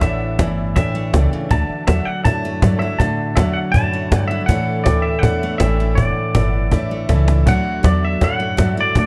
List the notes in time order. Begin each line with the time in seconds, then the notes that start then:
Already playing: E3 A3 D4 A4
0.01 A1 A2 E4 A4 D5 E5 F#5, cajon bass, cajon slap
0.20 cajon slap
0.39 G1 E3 E4 A4 D5 E5, cajon bass, cajon slap
0.58 cajon slap
0.67 cajon slap
0.76 A1 A2 D4 E4 A4 D5 E5 G5, cajon bass, cajon slap
0.95 A3, cajon slap
1.13 C#2 B2 E4 A4 D5 G5, cajon bass, cajon slap
1.32 C#3, muted upright bass stroke, cajon slap
1.41 cajon slap
1.51 D2 D3 F#4 A4 D5 E5 A5, cajon bass, cajon slap
1.69 muted upright bass stroke, cajon slap
1.87 E2 F#3 F#4 A4 D5 E5 F#5, cajon bass, cajon slap
2.05 F#5, muted upright bass stroke, cajon slap
2.25 F#2 A2 E4 F#4 A4 D5 E5 A5, cajon bass, cajon slap
2.44 A3, cajon slap
2.62 G2 F#3 F#4 A4 D5 E5, cajon bass, cajon slap
2.79 E4 E5, cajon slap
2.91 cajon slap
2.99 A2 D3 F#4 A4 D5 E5 A5, cajon bass, cajon slap
3.18 cajon slap
3.36 E2 F#3 F#4 A4 D5 E5 F#5, cajon bass, cajon slap
3.53 F#5, cajon slap
3.72 F#2 A2 F#4 A4 D5 E5 A5, cajon bass, cajon slap
3.76 E4
3.93 A3, cajon slap
4.11 G2 F#3 F#4 A4 D5 F#5, cajon bass, cajon slap
4.28 E4 E5, cajon slap
4.40 cajon slap
4.46 A2 E3 E4 A4 D5 E5 F#5, cajon bass, cajon slap
4.50 A3 D4 A4
4.67 cajon slap
4.84 D2 E3 E4 A4 D5 G5, cajon bass, cajon slap
5.02 E5, cajon slap
5.14 cajon slap
5.19 E4 A4 D5 F#5, cajon slap
5.23 E2 A2 D4 E5, cajon bass
5.41 A3, cajon slap
5.58 A1 E3 E4 A4 D5 E5 G5, cajon bass, cajon slap
5.79 D4, cajon slap
5.95 E1 A2 E4 A4 D5 F#5, cajon bass, cajon slap
6.16 muted upright bass stroke, cajon slap
6.34 G1 E3 E4 A4 D5 F#5, cajon bass, cajon slap
6.53 cajon slap
6.71 A1 A2 D4 E4 A4 D5 E5, cajon bass, cajon slap
6.91 A3
7.09 C#2 E3 E4 A4 D5 E5, cajon bass, cajon slap
7.28 D4, cajon slap
7.46 D2 D3 F#3 A3 E4 F#4 A4 D5 E5 F#5, cajon bass, cajon slap
7.66 cajon slap
7.83 E2 F#3 F#4 A4 D5 E5, cajon bass, cajon slap
8.03 E5, cajon slap
8.13 cajon slap
8.21 F#2 A2 E4 F#4 A4 D5 E5 F#5, cajon bass, cajon slap
8.40 A3, cajon slap
8.57 G2 F#3 F#4 A4 D5 E5, cajon bass, cajon slap
8.77 E4 D5, cajon slap
8.95 A2 D3 F#4 A4 D5 F#5, cajon bass, cajon slap